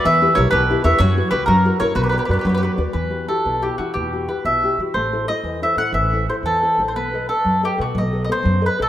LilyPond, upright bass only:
\new Staff \with { instrumentName = "Upright bass" } { \clef bass \time 6/8 \key b \minor \tempo 4. = 121 e,4 b,,8 b,,4 e,8 | fis,4 cis,8 fis,4 fis,8 | b,,4 fis,8 fis,4 dis,8 | \key e \minor e,4. b,,4 e8 |
e,4. b,,4 e8 | a,,4. e,4 a,8 | a,,4. e,4 a,,8 | b,,4. fis,4 b,8 |
b,,4. fis,4 b,,8 | }